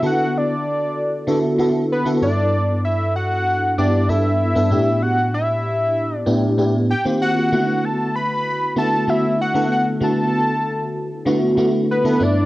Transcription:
0.00 0.02 D3 medium
0.00 1.13 D3 medium
0.00 0.02 B3 medium
0.00 1.13 B3 medium
0.00 0.03 E4 medium
0.00 1.13 E4 medium
0.00 0.03 F#4 medium
0.00 1.14 F#4 medium
0.00 0.03 A4 medium
0.00 1.14 A4 medium
0.06 0.39 F#5 loud
0.37 1.61 D5 medium
1.27 1.55 D3 medium
1.27 1.55 B3 medium
1.27 1.56 E4 medium
1.27 1.56 F#4 medium
1.27 1.56 A4 medium
1.58 2.00 D3 medium
1.58 2.00 B3 medium
1.58 2.01 E4 medium
1.58 2.01 F#4 medium
1.58 2.01 A4 medium
1.92 2.06 B4 medium
2.05 2.21 D3 medium
2.05 2.20 B3 medium
2.05 2.21 E4 medium
2.05 2.22 F#4 medium
2.05 2.21 A4 medium
2.21 3.32 G2 medium
2.21 3.32 B3 medium
2.21 3.32 D4 medium
2.21 3.32 E4 medium
2.21 3.32 A4 medium
2.21 2.81 D5 loud
2.85 3.14 E5 medium
3.16 3.74 F#5 loud
3.78 4.05 G2 medium
3.78 4.06 B3 medium
3.78 4.06 D4 medium
3.78 4.06 E4 medium
3.78 4.06 G4 medium
3.78 4.10 D5 loud
4.08 4.50 G2 medium
4.08 4.50 B3 medium
4.08 4.50 D4 medium
4.08 4.51 E4 medium
4.08 4.51 A4 medium
4.08 5.04 E5 loud
4.55 4.71 G2 medium
4.55 4.69 B3 medium
4.55 4.70 D4 medium
4.55 4.70 E4 medium
4.55 4.72 A4 medium
4.70 5.81 A2 medium
4.70 5.81 B3 medium
4.70 5.82 D4 medium
4.70 5.82 E4 medium
4.70 5.82 G4 medium
5.02 5.34 F#5 loud
5.34 6.16 E5 medium
6.16 6.55 D5 medium
6.26 6.54 A2 medium
6.26 6.54 B3 medium
6.26 6.55 D4 medium
6.26 6.55 E4 medium
6.26 6.55 G4 medium
6.58 6.89 A2 medium
6.58 6.89 B3 medium
6.58 6.90 D4 medium
6.58 6.90 E4 medium
6.58 6.90 G4 medium
6.90 7.04 G5 loud
7.05 7.47 D#3 medium
7.05 7.47 A#3 medium
7.05 7.47 C4 medium
7.05 7.47 F4 medium
7.05 7.47 G4 medium
7.22 7.86 F#5 loud
7.52 8.62 D3 medium
7.52 8.62 A3 medium
7.52 8.62 B3 medium
7.52 8.63 E4 medium
7.52 8.63 F#4 medium
7.85 8.15 A5 medium
8.16 8.74 B5 loud
8.76 9.04 D3 medium
8.76 9.04 A3 medium
8.76 9.04 B3 medium
8.76 9.04 E4 medium
8.76 9.04 F#4 medium
8.76 9.11 A5 loud
9.07 9.49 D3 medium
9.07 9.49 A3 medium
9.07 9.49 B3 medium
9.07 9.49 E4 medium
9.07 9.50 F#4 medium
9.07 9.40 E5 medium
9.42 9.69 F#5 medium
9.54 9.96 D3 medium
9.54 9.96 A3 medium
9.54 9.96 B3 medium
9.54 9.96 E4 medium
9.54 9.97 A4 medium
9.72 9.86 F#5 medium
10.00 11.11 D3 medium
10.00 11.11 A3 medium
10.00 11.11 B3 medium
10.00 11.12 E4 medium
10.00 11.12 F#4 medium
10.00 11.23 A5 loud
11.25 11.53 D3 medium
11.25 11.54 A3 medium
11.25 11.54 B3 medium
11.25 11.54 E4 medium
11.25 11.54 F#4 medium
11.57 11.98 D3 medium
11.57 11.98 A3 medium
11.57 11.99 B3 medium
11.57 11.99 E4 medium
11.57 11.99 F#4 medium
11.91 12.24 B4 loud
12.04 12.20 D3 medium
12.04 12.18 A3 medium
12.04 12.19 B3 medium
12.04 12.19 E4 medium
12.04 12.20 A4 medium
12.19 12.46 G2 medium
12.19 12.46 A3 medium
12.19 12.46 B3 medium
12.19 12.46 D4 medium
12.19 12.46 E4 medium
12.19 12.46 D5 loud

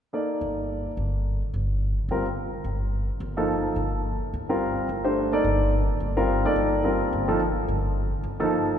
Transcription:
0.13 0.90 A#3 soft
0.13 0.90 D#4 soft
0.13 0.90 A4 soft
0.13 0.91 D5 soft
0.41 0.85 G1 medium
0.97 1.41 G1 medium
1.54 1.97 G1 medium
2.08 2.52 G1 medium
2.08 2.25 G3 medium
2.08 2.25 C4 soft
2.08 2.25 F4 soft
2.08 2.25 A#4 medium
2.64 3.08 G1 medium
3.20 3.64 G1 medium
3.37 3.74 F3 medium
3.37 3.74 A#3 medium
3.37 3.74 D#4 medium
3.37 3.75 A4 medium
3.76 4.20 G1 medium
4.34 4.77 G1 medium
4.49 4.86 G3 medium
4.49 4.87 C4 soft
4.49 4.87 F4 medium
4.49 4.87 A#4 medium
4.89 5.32 G1 medium
5.04 5.31 A3 medium
5.04 5.31 D4 medium
5.04 5.31 G4 soft
5.04 5.31 C5 medium
5.32 5.70 A#3 medium
5.32 5.70 D#4 medium
5.32 5.70 A4 medium
5.32 5.70 D5 medium
5.44 5.88 G1 medium
6.00 6.44 G1 medium
6.17 6.43 G3 medium
6.17 6.43 C4 medium
6.17 6.43 F4 medium
6.17 6.43 A#4 medium
6.45 6.82 A#3 medium
6.45 6.82 D#4 medium
6.45 6.83 A4 medium
6.45 6.82 D5 medium
6.56 7.00 G1 medium
6.84 7.25 G3 medium
6.84 7.26 C4 medium
6.84 7.25 F4 soft
6.84 7.26 A#4 medium
7.13 7.56 G1 medium
7.28 7.39 F3 medium
7.28 7.39 A#3 medium
7.28 7.39 D#4 medium
7.28 7.39 A4 medium
7.68 8.12 G1 medium
8.24 8.67 G1 medium
8.40 8.77 F3 medium
8.40 8.77 A#3 medium
8.40 8.77 D#4 medium
8.40 8.77 A4 medium

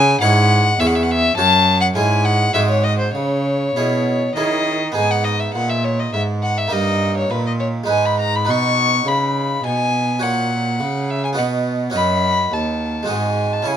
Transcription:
0.00 0.19 C#3 medium
0.00 0.21 C#3 loud
0.00 0.20 G#5 loud
0.21 0.75 G#2 medium
0.21 0.79 G#2 loud
0.21 0.63 C#4 medium
0.21 0.63 E4 medium
0.21 0.64 C#5 medium
0.21 0.81 F#5 loud
0.80 1.36 E2 medium
0.80 1.33 E2 medium
0.80 1.34 C#4 medium
0.80 1.34 G#4 medium
0.80 1.34 C#5 medium
0.80 0.88 E5 loud
0.87 0.97 F#5 medium
0.95 1.05 E5 medium
1.03 1.13 F#5 medium
1.11 1.36 E5 loud
1.37 1.94 F#2 medium
1.37 1.92 F#2 medium
1.37 1.92 C#4 medium
1.37 1.92 F#4 medium
1.37 1.92 C#5 medium
1.37 1.80 A5 loud
1.81 1.87 F#5 loud
1.95 2.50 G#2 medium
1.95 2.53 G#2 medium
1.95 2.53 G#3 medium
1.95 2.50 C#4 medium
1.95 2.51 E4 medium
1.95 2.51 G#4 soft
1.95 2.26 G#5 loud
2.25 2.53 F#5 loud
2.54 3.14 G#2 medium
2.54 3.11 G#2 medium
2.54 3.13 G#3 medium
2.54 3.11 C4 soft
2.54 3.11 F#4 soft
2.54 3.11 G#4 soft
2.54 2.60 E5 loud
2.69 2.85 C#5 medium
2.84 2.98 D#5 medium
2.99 3.14 C5 medium
3.14 3.74 C#3 medium
3.14 3.72 C#3 medium
3.14 4.33 C#5 medium
3.76 4.35 B2 medium
3.76 4.32 B2 medium
3.76 4.20 C#4 soft
3.76 4.20 E4 soft
3.76 4.20 G#4 soft
4.35 4.92 D#3 medium
4.35 4.95 D#3 medium
4.35 4.80 C#4 soft
4.35 4.80 E4 soft
4.35 4.80 G#4 soft
4.35 4.92 D#5 medium
4.92 6.66 B3 medium
4.92 6.67 D#4 soft
4.92 6.67 G#4 medium
4.92 5.12 G#5 loud
4.97 5.51 G#2 medium
5.11 5.26 F#5 medium
5.24 5.41 D#5 medium
5.39 5.53 E5 medium
5.54 6.10 A#2 medium
5.54 6.13 A#2 medium
5.54 5.71 F#5 medium
5.69 5.86 E5 medium
5.84 6.01 C#5 medium
5.99 6.13 D#5 medium
6.13 6.68 G#2 soft
6.13 6.71 G#2 medium
6.13 6.21 E5 medium
6.43 6.59 F#5 medium
6.58 6.74 E5 medium
6.68 7.83 A#3 soft
6.68 7.84 D#4 soft
6.68 7.84 A#4 soft
6.72 7.26 G2 medium
6.72 7.29 G2 medium
6.72 7.16 D#5 medium
7.17 7.32 C#5 medium
7.30 7.85 A#2 medium
7.30 7.88 A#2 medium
7.30 7.45 B4 medium
7.46 7.52 D#5 medium
7.60 7.68 C#5 medium
7.84 8.43 G#3 soft
7.84 8.44 D#4 medium
7.84 8.45 B4 soft
7.88 8.43 G#2 soft
7.88 8.50 G#2 medium
7.88 8.07 G#5 medium
8.05 8.19 B5 medium
8.20 8.37 A#5 loud
8.35 8.51 B5 medium
8.45 9.02 B2 medium
8.45 9.06 B2 medium
8.45 10.17 D#4 soft
8.45 10.17 B4 soft
8.50 9.09 C#6 loud
9.06 9.60 C#3 soft
9.06 9.63 C#3 medium
9.06 9.65 B5 medium
9.64 10.18 B2 medium
9.64 10.24 B2 medium
9.64 10.25 G#5 loud
10.19 10.76 A#2 medium
10.19 10.82 A#2 medium
10.19 11.33 F#4 soft
10.19 11.33 C#5 soft
10.19 11.12 F#5 medium
10.80 11.33 C#3 medium
10.80 11.39 C#3 medium
11.10 11.24 E5 medium
11.24 11.30 G#5 medium
11.33 11.91 B3 soft
11.33 11.90 F#4 soft
11.33 11.92 D#5 soft
11.37 11.91 B2 soft
11.37 11.95 B2 medium
11.37 11.46 F#5 medium
11.90 13.03 C#4 soft
11.90 13.04 F#4 soft
11.90 13.05 D#5 soft
11.94 12.48 F#2 medium
11.94 12.51 F#2 medium
11.94 12.55 B5 loud
12.52 13.05 D#2 soft
12.52 13.09 D#2 medium
12.52 13.09 A5 medium
13.03 13.62 G#3 medium
13.03 13.62 C4 soft
13.03 13.63 F#4 soft
13.07 13.62 G#2 soft
13.07 13.66 G#2 medium
13.07 13.64 D#5 soft
13.07 13.55 G#5 medium
13.53 13.69 A5 medium
13.62 13.77 C#4 soft
13.62 13.77 E4 soft
13.62 13.77 C#5 soft
13.67 13.77 C#3 medium
13.67 13.77 G#5 medium

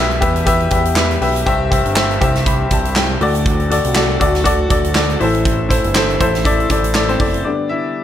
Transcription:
0.00 0.24 B1 medium
0.00 0.18 B2 medium
0.00 3.18 E3 medium
0.00 1.45 G3 medium
0.00 1.45 B3 medium
0.00 0.21 G4 medium
0.00 3.18 G4 medium
0.00 0.22 B4 medium
0.00 0.22 E5 loud
0.11 closed hi-hat soft
0.21 0.68 E2 medium
0.21 0.41 G4 medium
0.21 0.42 B4 medium
0.21 0.42 E5 medium
0.21 kick medium
0.21 closed hi-hat medium
0.36 closed hi-hat soft
0.46 0.66 G4 loud
0.46 0.67 B4 medium
0.46 0.67 E5 loud
0.46 kick medium
0.46 closed hi-hat medium
0.60 closed hi-hat soft
0.70 1.18 E2 loud
0.70 0.91 G4 medium
0.70 0.91 B4 medium
0.70 0.92 E5 medium
0.70 kick medium
0.70 closed hi-hat medium
0.85 closed hi-hat medium
0.96 1.16 G4 medium
0.96 1.17 B4 medium
0.96 1.17 E5 medium
0.96 snare loud
0.96 clap medium
1.11 closed hi-hat soft
1.21 1.44 B1 medium
1.21 1.41 G4 medium
1.21 1.42 B4 medium
1.21 1.42 E5 medium
1.21 open hi-hat medium
1.36 closed hi-hat medium
1.46 1.83 C2 loud
1.46 2.17 G2 medium
1.46 3.20 G3 medium
1.46 3.20 C4 medium
1.46 1.66 G4 loud
1.46 1.67 C5 medium
1.46 1.67 E5 loud
1.46 kick loud
1.46 closed hi-hat medium
1.71 1.91 G4 medium
1.71 1.91 C5 medium
1.71 1.92 E5 medium
1.71 kick medium
1.71 closed hi-hat medium
1.86 2.19 G1 medium
1.86 closed hi-hat medium
1.95 2.16 G4 medium
1.95 2.16 C5 medium
1.95 2.17 E5 medium
1.95 snare loud
1.95 clap medium
2.11 closed hi-hat soft
2.21 2.68 C2 loud
2.21 2.41 G4 medium
2.21 2.41 C5 medium
2.21 2.42 E5 medium
2.21 kick medium
2.21 closed hi-hat medium
2.35 snare soft
2.35 closed hi-hat soft
2.46 2.70 B5 medium
2.46 kick medium
2.46 closed hi-hat medium
2.71 3.17 C2 medium
2.71 2.95 A5 medium
2.71 kick medium
2.71 closed hi-hat medium
2.85 closed hi-hat medium
2.96 3.44 G5 medium
2.96 snare loud
2.96 clap medium
3.21 3.81 D2 medium
3.21 3.92 A2 medium
3.21 5.19 D3 medium
3.21 5.19 F#3 medium
3.21 5.19 A3 medium
3.21 3.62 F#4 medium
3.21 5.19 F#4 medium
3.21 3.62 A4 medium
3.21 3.63 D5 medium
3.21 open hi-hat medium
3.35 closed hi-hat medium
3.46 kick loud
3.46 closed hi-hat medium
3.60 closed hi-hat soft
3.70 3.91 F#4 medium
3.70 3.91 A4 medium
3.70 3.91 D5 medium
3.70 closed hi-hat medium
3.84 4.18 C2 medium
3.84 closed hi-hat medium
3.95 4.15 F#4 medium
3.95 4.16 A4 medium
3.95 4.16 D5 medium
3.95 snare loud
3.95 clap medium
4.20 4.67 D2 medium
4.20 4.40 F#4 medium
4.20 4.41 A4 medium
4.20 4.41 D5 loud
4.20 kick medium
4.20 closed hi-hat medium
4.35 snare soft
4.35 closed hi-hat soft
4.44 4.65 F#4 loud
4.44 4.65 A4 medium
4.44 4.66 D5 loud
4.44 kick medium
4.44 closed hi-hat medium
4.69 5.17 D2 loud
4.69 4.90 F#4 medium
4.69 4.90 A4 medium
4.69 4.91 D5 medium
4.69 kick medium
4.69 closed hi-hat medium
4.84 closed hi-hat medium
4.95 5.15 F#4 medium
4.95 5.15 A4 medium
4.95 5.16 D5 medium
4.95 snare loud
4.95 clap medium
5.09 closed hi-hat soft
5.20 5.81 A1 loud
5.20 5.91 A2 medium
5.20 7.28 C3 medium
5.20 5.91 E3 medium
5.20 7.28 E3 medium
5.20 7.28 A3 medium
5.20 5.61 E4 medium
5.20 7.28 E4 medium
5.20 5.61 A4 medium
5.20 5.62 C5 medium
5.20 open hi-hat medium
5.35 closed hi-hat medium
5.45 kick medium
5.45 closed hi-hat medium
5.69 5.90 E4 medium
5.69 5.90 A4 medium
5.69 5.90 C5 medium
5.69 kick medium
5.69 closed hi-hat medium
5.84 6.18 G1 medium
5.84 closed hi-hat soft
5.95 6.15 E4 medium
5.95 6.15 A4 medium
5.95 6.15 C5 medium
5.95 snare loud
5.95 clap medium
6.10 closed hi-hat soft
6.20 6.67 A1 medium
6.20 6.40 E4 medium
6.20 6.40 A4 medium
6.20 6.40 C5 loud
6.20 kick medium
6.20 closed hi-hat medium
6.35 snare soft
6.35 closed hi-hat soft
6.45 6.65 E4 medium
6.45 6.65 A4 medium
6.45 6.65 D5 loud
6.45 kick medium
6.45 closed hi-hat medium
6.60 closed hi-hat soft
6.69 7.16 A1 loud
6.69 6.90 E4 medium
6.69 6.90 A4 medium
6.69 6.90 D5 medium
6.69 kick medium
6.69 closed hi-hat medium
6.84 closed hi-hat medium
6.94 7.08 A3 medium
6.94 7.15 E4 medium
6.94 7.09 A4 medium
6.94 7.15 D5 medium
6.94 snare loud
6.94 clap medium
7.09 7.43 C4 medium
7.09 7.46 C5 medium
7.09 closed hi-hat soft
7.19 7.43 F#1 medium
7.19 7.40 E4 medium
7.19 7.40 A4 medium
7.19 7.40 D5 medium
7.19 kick medium
7.19 open hi-hat medium
7.34 closed hi-hat medium
7.44 8.04 D3 medium
7.44 8.04 D3 soft
7.44 8.04 G3 medium
7.44 8.04 G3 soft
7.44 8.04 B3 medium
7.44 8.04 B3 soft
7.44 7.69 D4 medium
7.44 8.04 G4 medium
7.44 7.70 D5 medium
7.69 8.04 E4 medium
7.69 8.04 E5 medium

